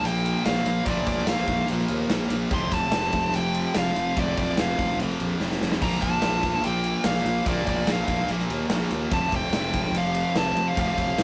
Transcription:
0.00 0.33 A#1 medium
0.00 0.83 A#2 loud
0.00 0.86 F3 medium
0.00 0.86 A#3 loud
0.05 0.85 A#2 medium
0.05 0.89 F3 medium
0.05 0.45 G5 loud
0.05 ride loud
0.09 0.87 A#3 medium
0.26 ride medium
0.45 0.60 A#1 medium
0.45 0.87 F5 medium
0.45 snare loud
0.45 ride loud
0.66 0.81 A#1 medium
0.66 ride medium
0.85 1.01 A#1 loud
0.85 1.68 A#2 loud
0.85 1.71 F3 medium
0.85 1.07 D5 medium
0.85 kick loud
0.85 ride loud
0.90 1.69 A#3 loud
1.07 1.22 A#1 medium
1.07 1.28 D5 medium
1.07 kick medium
1.07 ride medium
1.27 1.42 A#1 medium
1.27 1.66 F5 medium
1.27 snare loud
1.27 ride loud
1.47 1.63 A#1 medium
1.47 kick medium
1.47 ride medium
1.68 1.84 A#1 loud
1.68 2.50 A#2 medium
1.68 2.54 F3 medium
1.68 ride loud
1.73 2.52 A#3 medium
1.79 snare soft
1.88 2.04 D#2 medium
1.88 ride medium
2.10 2.25 A#1 loud
2.10 snare loud
2.10 ride loud
2.30 2.45 A#1 medium
2.30 ride medium
2.50 2.66 F1 medium
2.50 3.32 F2 medium
2.50 3.33 C3 loud
2.50 kick loud
2.50 ride loud
2.54 3.36 F3 loud
2.54 2.73 C6 loud
2.72 2.86 F1 loud
2.72 3.36 A5 loud
2.72 kick medium
2.72 ride medium
2.92 3.21 F1 loud
2.92 snare loud
2.92 ride loud
3.13 kick medium
3.13 ride medium
3.32 3.64 F1 medium
3.32 4.14 F2 medium
3.32 4.15 C3 medium
3.32 3.77 G5 loud
3.32 ride loud
3.37 4.19 F3 medium
3.55 ride medium
3.75 3.91 F1 medium
3.75 4.19 F5 medium
3.75 snare loud
3.75 ride loud
3.96 4.12 F1 medium
3.96 ride medium
4.16 4.32 F1 loud
4.16 4.97 F2 medium
4.16 4.99 C3 loud
4.16 5.02 F3 loud
4.16 4.37 D5 medium
4.16 kick loud
4.16 ride loud
4.37 4.52 F1 medium
4.37 4.59 D5 medium
4.37 kick medium
4.37 ride medium
4.57 4.74 F1 medium
4.57 4.97 F5 medium
4.57 snare loud
4.57 ride loud
4.78 4.93 F1 medium
4.78 kick medium
4.78 ride medium
4.98 5.14 F1 medium
4.98 5.80 F2 medium
4.98 5.80 C3 medium
4.98 5.81 F3 medium
4.98 ride medium
5.10 snare soft
5.20 5.34 A#1 medium
5.20 ride medium
5.40 5.55 F1 medium
5.40 snare medium
5.51 snare medium
5.61 5.76 F1 medium
5.61 snare medium
5.72 snare medium
5.80 5.97 A#1 medium
5.80 6.63 A#2 medium
5.80 6.65 F3 medium
5.80 6.66 A#3 loud
5.80 6.02 A#5 loud
5.80 kick loud
5.80 crash loud
6.02 6.17 A#1 medium
6.02 6.66 A5 loud
6.02 kick medium
6.02 ride medium
6.22 6.52 A#1 medium
6.22 snare loud
6.22 ride loud
6.43 kick medium
6.43 ride medium
6.63 6.93 A#1 medium
6.63 7.44 A#2 medium
6.63 7.46 F3 medium
6.63 7.47 A#3 medium
6.63 7.05 G5 loud
6.63 ride loud
6.84 ride medium
7.04 7.19 A#1 medium
7.04 7.44 F5 medium
7.04 snare loud
7.04 ride loud
7.24 7.40 A#1 medium
7.24 ride medium
7.45 7.61 A#1 medium
7.45 8.27 A#2 medium
7.45 8.31 F3 loud
7.45 kick loud
7.45 ride loud
7.49 8.29 A#3 loud
7.49 7.68 D5 medium
7.67 7.82 A#1 medium
7.67 7.90 D5 medium
7.67 kick medium
7.67 ride medium
7.86 8.02 A#1 loud
7.86 snare loud
7.86 ride loud
7.92 8.28 F5 medium
8.08 8.23 A#1 loud
8.08 kick medium
8.08 ride medium
8.28 8.44 A#1 medium
8.28 9.11 A#2 medium
8.28 9.14 F3 medium
8.28 ride loud
8.32 9.12 A#3 medium
8.40 snare soft
8.49 8.64 D#2 loud
8.49 ride medium
8.70 8.85 A#1 medium
8.70 snare loud
8.70 ride loud
8.91 9.06 D#2 medium
8.91 ride medium
9.11 9.27 F1 medium
9.11 9.93 F2 medium
9.11 9.94 C3 loud
9.11 9.97 F3 loud
9.11 9.34 A5 loud
9.11 kick loud
9.11 ride loud
9.32 9.47 F1 loud
9.32 9.98 G5 loud
9.32 kick medium
9.32 ride medium
9.52 9.82 F1 medium
9.52 snare loud
9.52 ride loud
9.73 kick medium
9.73 ride medium
9.92 10.23 F1 medium
9.92 10.76 F2 medium
9.92 ride loud
9.96 10.77 C3 medium
9.96 10.80 F3 medium
9.96 10.38 F5 medium
10.05 snare soft
10.15 ride medium
10.36 10.51 F1 medium
10.36 10.68 A5 loud
10.36 snare loud
10.36 ride loud
10.55 10.70 F1 medium
10.55 ride medium
10.68 10.78 F5 medium
10.76 10.92 F1 medium
10.76 11.23 F2 medium
10.76 11.23 C3 medium
10.76 11.23 F3 medium
10.76 11.23 F5 medium
10.76 kick loud
10.76 ride loud
10.98 11.13 F1 loud
10.98 kick medium
10.98 ride medium
11.19 11.23 F1 medium
11.19 snare loud
11.19 ride loud

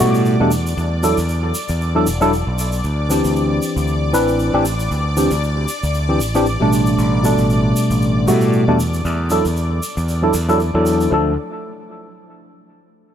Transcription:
0.00 0.35 A2 medium
0.00 0.36 B2 loud
0.00 0.37 G3 medium
0.00 0.37 A3 medium
0.00 0.37 F#4 loud
0.00 2.83 D5 medium
0.00 2.83 D6 medium
0.00 shaker loud
0.14 shaker medium
0.25 shaker soft
0.40 0.74 E2 medium
0.40 0.50 B2 loud
0.40 0.50 G3 medium
0.40 0.50 A3 medium
0.40 0.50 D4 loud
0.51 shaker medium
0.67 shaker medium
0.77 1.13 E2 loud
0.77 shaker soft
1.03 1.16 F#3 medium
1.03 1.16 D4 medium
1.03 1.16 E4 medium
1.03 1.16 A4 loud
1.03 shaker loud
1.17 1.51 E2 loud
1.17 shaker medium
1.29 shaker soft
1.54 shaker loud
1.69 2.08 E2 medium
1.69 shaker medium
1.81 shaker soft
1.95 2.05 F#3 medium
1.95 2.05 D4 medium
1.95 2.05 E4 medium
1.95 2.06 A4 medium
2.07 2.42 E1 medium
2.07 shaker loud
2.21 2.31 F#3 loud
2.21 2.31 D4 loud
2.21 2.31 E4 medium
2.21 2.31 A4 loud
2.21 shaker medium
2.33 shaker soft
2.47 2.80 B1 medium
2.59 shaker medium
2.72 shaker soft
2.84 3.20 D2 medium
2.84 11.13 D5 medium
2.84 11.13 D6 medium
2.84 shaker soft
3.09 4.10 E3 medium
3.09 4.11 C4 medium
3.09 4.11 D4 medium
3.09 4.12 G4 medium
3.09 shaker loud
3.25 3.58 D2 loud
3.25 shaker medium
3.36 shaker soft
3.62 shaker medium
3.76 4.14 D2 medium
3.76 shaker soft
3.87 shaker soft
4.13 4.49 A1 medium
4.13 4.50 E3 loud
4.13 4.50 C4 medium
4.13 4.51 D4 medium
4.13 4.51 B4 loud
4.13 shaker loud
4.28 shaker soft
4.39 shaker soft
4.53 4.87 A1 medium
4.53 4.64 E3 loud
4.53 4.64 C4 medium
4.53 4.64 D4 medium
4.53 4.64 G4 loud
4.65 shaker loud
4.80 shaker soft
4.91 5.27 D2 loud
4.91 shaker soft
5.17 5.30 E3 medium
5.17 5.30 C4 medium
5.17 5.30 D4 medium
5.17 5.30 G4 medium
5.17 shaker medium
5.31 5.65 D2 loud
5.31 shaker medium
5.43 shaker soft
5.68 shaker medium
5.83 6.20 D2 loud
5.83 shaker medium
5.94 shaker soft
6.09 6.19 E3 medium
6.09 6.19 C4 medium
6.09 6.19 D4 medium
6.09 6.19 G4 medium
6.20 6.56 A1 medium
6.20 shaker medium
6.34 6.45 E3 loud
6.34 6.45 C4 medium
6.34 6.45 D4 medium
6.34 6.45 G4 loud
6.34 shaker soft
6.46 shaker soft
6.60 6.94 A1 medium
6.60 7.21 B2 medium
6.60 7.21 G3 medium
6.60 7.21 A3 medium
6.60 7.22 D4 loud
6.73 shaker medium
6.86 shaker medium
6.98 7.34 A1 loud
6.98 shaker soft
7.23 8.24 B2 medium
7.23 8.24 G3 medium
7.23 8.25 A3 medium
7.23 8.25 D4 loud
7.23 shaker medium
7.38 7.72 A1 loud
7.38 shaker medium
7.50 shaker soft
7.76 shaker medium
7.90 8.29 A1 medium
7.90 shaker medium
8.02 shaker soft
8.27 8.63 A2 medium
8.27 8.64 B2 loud
8.27 8.64 G3 loud
8.27 8.64 A3 medium
8.27 8.65 F#4 loud
8.27 shaker medium
8.41 shaker medium
8.53 shaker soft
8.67 9.01 E2 medium
8.67 8.77 B2 loud
8.67 8.78 G3 medium
8.67 8.78 A3 medium
8.67 8.78 D4 loud
8.80 shaker medium
8.94 shaker medium
9.05 9.40 E2 loud
9.05 shaker soft
9.30 9.43 F#3 medium
9.30 9.44 D4 medium
9.30 9.44 E4 medium
9.30 9.44 A4 loud
9.30 shaker medium
9.45 9.79 E2 loud
9.45 shaker soft
9.57 shaker soft
9.83 shaker medium
9.97 10.30 E2 loud
9.97 shaker soft
10.08 shaker soft
10.22 10.33 F#3 medium
10.22 10.33 D4 medium
10.22 10.33 E4 medium
10.22 10.33 A4 medium
10.33 10.70 E2 loud
10.33 shaker loud
10.48 10.58 F#3 loud
10.48 10.59 D4 medium
10.48 10.59 E4 medium
10.48 10.59 A4 loud
10.48 shaker soft
10.60 shaker soft
10.74 11.08 E2 loud
10.74 11.10 F#3 medium
10.74 11.10 D4 medium
10.74 11.11 E4 medium
10.74 11.11 A4 loud
10.86 shaker medium
11.01 shaker soft
11.10 11.36 D2 medium
11.10 11.31 F3 medium
11.10 11.31 A3 medium
11.10 11.32 D4 medium
11.10 11.33 A4 medium

